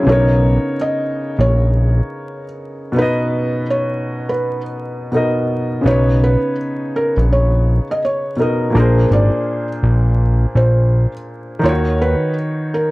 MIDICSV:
0, 0, Header, 1, 4, 480
1, 0, Start_track
1, 0, Key_signature, 5, "major"
1, 0, Tempo, 722892
1, 46, Time_signature, 4, 2, 24, 8
1, 8574, End_track
2, 0, Start_track
2, 0, Title_t, "Felt piano"
2, 0, Program_c, 0, 0
2, 60, Note_on_c, 0, 73, 83
2, 506, Note_off_c, 0, 73, 0
2, 539, Note_on_c, 0, 75, 78
2, 902, Note_off_c, 0, 75, 0
2, 933, Note_on_c, 0, 73, 78
2, 1619, Note_off_c, 0, 73, 0
2, 1981, Note_on_c, 0, 71, 81
2, 2427, Note_off_c, 0, 71, 0
2, 2459, Note_on_c, 0, 73, 74
2, 2845, Note_off_c, 0, 73, 0
2, 2850, Note_on_c, 0, 71, 68
2, 3061, Note_off_c, 0, 71, 0
2, 3900, Note_on_c, 0, 73, 89
2, 4110, Note_off_c, 0, 73, 0
2, 4141, Note_on_c, 0, 71, 86
2, 4350, Note_off_c, 0, 71, 0
2, 4622, Note_on_c, 0, 70, 76
2, 4752, Note_off_c, 0, 70, 0
2, 4864, Note_on_c, 0, 73, 74
2, 5225, Note_off_c, 0, 73, 0
2, 5253, Note_on_c, 0, 75, 75
2, 5325, Note_off_c, 0, 75, 0
2, 5343, Note_on_c, 0, 73, 74
2, 5551, Note_off_c, 0, 73, 0
2, 5820, Note_on_c, 0, 70, 89
2, 6030, Note_off_c, 0, 70, 0
2, 6062, Note_on_c, 0, 74, 78
2, 6424, Note_off_c, 0, 74, 0
2, 7018, Note_on_c, 0, 72, 77
2, 7381, Note_off_c, 0, 72, 0
2, 7739, Note_on_c, 0, 73, 90
2, 7949, Note_off_c, 0, 73, 0
2, 7978, Note_on_c, 0, 71, 85
2, 8189, Note_off_c, 0, 71, 0
2, 8460, Note_on_c, 0, 70, 68
2, 8574, Note_off_c, 0, 70, 0
2, 8574, End_track
3, 0, Start_track
3, 0, Title_t, "Upright piano"
3, 0, Program_c, 1, 0
3, 0, Control_c, 1, 64, 127
3, 18, Note_on_c, 1, 49, 66
3, 33, Note_on_c, 1, 59, 61
3, 50, Note_on_c, 1, 62, 52
3, 56, Control_c, 1, 64, 0
3, 66, Note_on_c, 1, 70, 62
3, 82, Note_on_c, 1, 73, 80
3, 93, Note_on_c, 1, 63, 59
3, 103, Note_off_c, 1, 62, 0
3, 167, Control_c, 1, 64, 127
3, 1926, Note_off_c, 1, 49, 0
3, 1933, Note_off_c, 1, 59, 0
3, 1939, Note_on_c, 1, 47, 61
3, 1949, Note_off_c, 1, 70, 0
3, 1956, Note_on_c, 1, 59, 63
3, 1957, Note_off_c, 1, 73, 0
3, 1961, Note_off_c, 1, 63, 0
3, 1971, Note_on_c, 1, 63, 58
3, 1989, Note_on_c, 1, 71, 59
3, 2004, Note_on_c, 1, 75, 72
3, 3366, Note_off_c, 1, 47, 0
3, 3374, Note_off_c, 1, 59, 0
3, 3382, Note_off_c, 1, 63, 0
3, 3391, Note_off_c, 1, 71, 0
3, 3397, Note_on_c, 1, 47, 54
3, 3399, Note_off_c, 1, 75, 0
3, 3404, Note_on_c, 1, 59, 49
3, 3412, Note_on_c, 1, 63, 52
3, 3420, Note_on_c, 1, 70, 51
3, 3429, Note_on_c, 1, 75, 61
3, 3859, Note_on_c, 1, 49, 64
3, 3867, Note_off_c, 1, 59, 0
3, 3877, Note_on_c, 1, 59, 66
3, 3881, Note_off_c, 1, 47, 0
3, 3881, Note_off_c, 1, 63, 0
3, 3891, Note_on_c, 1, 63, 58
3, 3893, Note_off_c, 1, 70, 0
3, 3895, Control_c, 1, 64, 0
3, 3898, Note_off_c, 1, 75, 0
3, 3909, Note_on_c, 1, 71, 67
3, 3924, Note_on_c, 1, 73, 69
3, 4025, Control_c, 1, 64, 127
3, 5526, Note_off_c, 1, 49, 0
3, 5535, Note_off_c, 1, 59, 0
3, 5542, Note_off_c, 1, 63, 0
3, 5551, Note_off_c, 1, 71, 0
3, 5555, Note_on_c, 1, 47, 51
3, 5559, Note_off_c, 1, 73, 0
3, 5563, Note_on_c, 1, 59, 49
3, 5572, Note_on_c, 1, 63, 44
3, 5580, Note_on_c, 1, 70, 51
3, 5587, Note_on_c, 1, 75, 53
3, 5778, Note_on_c, 1, 46, 70
3, 5794, Note_on_c, 1, 58, 62
3, 5801, Note_off_c, 1, 47, 0
3, 5804, Note_off_c, 1, 59, 0
3, 5809, Note_off_c, 1, 63, 0
3, 5809, Note_on_c, 1, 62, 63
3, 5813, Note_off_c, 1, 70, 0
3, 5814, Control_c, 1, 64, 0
3, 5817, Note_off_c, 1, 75, 0
3, 5827, Note_on_c, 1, 68, 64
3, 5842, Note_on_c, 1, 72, 74
3, 5951, Control_c, 1, 64, 127
3, 7685, Note_off_c, 1, 46, 0
3, 7694, Note_off_c, 1, 58, 0
3, 7698, Note_on_c, 1, 51, 69
3, 7701, Note_off_c, 1, 62, 0
3, 7710, Note_off_c, 1, 68, 0
3, 7713, Note_on_c, 1, 63, 60
3, 7718, Note_off_c, 1, 72, 0
3, 7728, Note_on_c, 1, 65, 50
3, 7735, Control_c, 1, 64, 0
3, 7762, Note_on_c, 1, 73, 78
3, 7773, Note_on_c, 1, 66, 61
3, 7782, Note_off_c, 1, 65, 0
3, 7851, Control_c, 1, 64, 127
3, 8574, Note_off_c, 1, 51, 0
3, 8574, Note_off_c, 1, 63, 0
3, 8574, Note_off_c, 1, 66, 0
3, 8574, Note_off_c, 1, 73, 0
3, 8574, End_track
4, 0, Start_track
4, 0, Title_t, "Analog synth bass"
4, 0, Program_c, 2, 38
4, 45, Note_on_c, 2, 35, 105
4, 388, Note_off_c, 2, 35, 0
4, 920, Note_on_c, 2, 34, 84
4, 1339, Note_off_c, 2, 34, 0
4, 3887, Note_on_c, 2, 35, 103
4, 4230, Note_off_c, 2, 35, 0
4, 4762, Note_on_c, 2, 34, 98
4, 5180, Note_off_c, 2, 34, 0
4, 5808, Note_on_c, 2, 34, 108
4, 6016, Note_off_c, 2, 34, 0
4, 6048, Note_on_c, 2, 32, 94
4, 6180, Note_off_c, 2, 32, 0
4, 6527, Note_on_c, 2, 34, 89
4, 6945, Note_off_c, 2, 34, 0
4, 7006, Note_on_c, 2, 34, 85
4, 7349, Note_off_c, 2, 34, 0
4, 7726, Note_on_c, 2, 39, 108
4, 8069, Note_off_c, 2, 39, 0
4, 8574, End_track
0, 0, End_of_file